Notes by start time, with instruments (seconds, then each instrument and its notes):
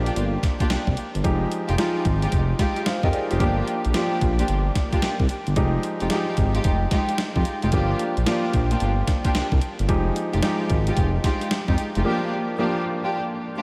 Already playing: analog synth bass A#1, grand piano F3 A#3 D4 G4
0.05 string section A#3 D4 F4 G4, closed hi-hat
0.16 analog synth bass G1, closed hi-hat
0.43 kick, snare, closed hi-hat
0.60 string section A#3 D4 F4 G4, kick, closed hi-hat
0.70 analog synth bass C2, snare, closed hi-hat
0.87 analog synth bass C2, kick
0.97 closed hi-hat
1.15 analog synth bass G1, closed hi-hat
1.24 analog synth bass F1, grand piano F3 G#3 D#4 G4, kick, closed hi-hat
1.52 closed hi-hat
1.68 analog synth bass F1, string section G#3 D#4 F4 G4, closed hi-hat
1.78 grand piano F3 G#3 D#4 F4, string section G#3 D#4 F4 G4, snare, closed hi-hat
2.05 analog synth bass G#1, kick, closed hi-hat
2.22 string section G#3 D#4 F4 G4, closed hi-hat
2.32 analog synth bass F1, kick, closed hi-hat
2.59 string section G#3 D#4 F4 G4, kick, snare, closed hi-hat
2.76 closed hi-hat
2.86 grand piano C5 F5, snare, closed hi-hat
3.03 analog synth bass F2, string section G#3 D#4 F4 G4, grand piano A#4 D#5, kick
3.13 grand piano G#4 D5, closed hi-hat
3.30 analog synth bass F1, string section G#3 D#4 F4 G4, grand piano G4 C5, closed hi-hat
3.39 analog synth bass G1, grand piano F3 A#3 D4 G4, string section A#3 D4 F4 G4, kick, closed hi-hat
3.68 closed hi-hat
3.85 analog synth bass A#1, closed hi-hat
3.93 grand piano F3 A#3 D4 G4, string section A#3 D4 F4 G4, snare, closed hi-hat
4.21 analog synth bass A#1, kick, closed hi-hat
4.38 string section A#3 D4 F4 G4, closed hi-hat
4.48 analog synth bass G1, closed hi-hat
4.75 kick, snare, closed hi-hat
4.92 string section A#3 D4 F4 G4, kick, closed hi-hat
5.02 analog synth bass C2, snare, closed hi-hat
5.20 analog synth bass C2, kick
5.29 closed hi-hat
5.47 analog synth bass G1, closed hi-hat
5.56 analog synth bass F1, grand piano F3 G#3 D#4 G4, kick, closed hi-hat
5.83 closed hi-hat
6.00 analog synth bass F1, string section G#3 D#4 F4 G4, closed hi-hat
6.10 grand piano F3 G#3 D#4 G4, string section G#3 D#4 F4 G4, snare, closed hi-hat
6.37 analog synth bass G#1, kick, closed hi-hat
6.55 string section G#3 D#4 F4 G4, closed hi-hat
6.64 analog synth bass F1, kick, closed hi-hat
6.91 string section G#3 D#4 F4 G4, kick, snare, closed hi-hat
7.09 closed hi-hat
7.18 snare, closed hi-hat
7.35 analog synth bass F2, string section G#3 D#4 F4 G4, kick
7.45 closed hi-hat
7.62 analog synth bass F1, string section G#3 D#4 F4 G4, closed hi-hat
7.72 analog synth bass G1, grand piano F3 A#3 D4 G4, string section A#3 D4 F4 G4, kick, closed hi-hat
7.99 closed hi-hat
8.17 analog synth bass A#1, closed hi-hat
8.26 grand piano F3 A#3 D4 F4, string section A#3 D4 F4 G4, snare, closed hi-hat
8.53 analog synth bass A#1, kick, closed hi-hat
8.70 string section A#3 D4 F4 G4, closed hi-hat
8.80 analog synth bass G1, closed hi-hat
9.07 kick, snare, closed hi-hat
9.24 string section A#3 D4 F4 G4, kick, closed hi-hat
9.35 analog synth bass C2, snare, closed hi-hat
9.52 analog synth bass C2, kick
9.61 closed hi-hat
9.79 analog synth bass G1, closed hi-hat
9.88 analog synth bass F1, grand piano F3 G#3 D#4 G4, kick, closed hi-hat
10.16 closed hi-hat
10.33 analog synth bass F1, string section G#3 D#4 F4 G4, closed hi-hat
10.42 grand piano F3 G#3 D#4 G4, string section G#3 D#4 F4 G4, snare, closed hi-hat
10.70 analog synth bass G#1, kick, closed hi-hat
10.87 string section G#3 D#4 F4 G4, closed hi-hat
10.97 analog synth bass F1, kick, closed hi-hat
11.24 string section G#3 D#4 F4 G4, kick, snare, closed hi-hat
11.41 closed hi-hat
11.51 snare, closed hi-hat
11.68 analog synth bass F2, string section G#3 D#4 F4 G4, kick
11.78 closed hi-hat
11.95 analog synth bass F1, string section G#3 D#4 F4 G4, closed hi-hat
12.04 grand piano F3 A#3 D4 G4, string section A#3 D4 F4 G4
12.58 grand piano F3 A#3 D4 G4, string section A#3 D4 F4 G4
13.03 string section A#3 D4 F4 G4
13.57 string section A#3 D4 F4 G4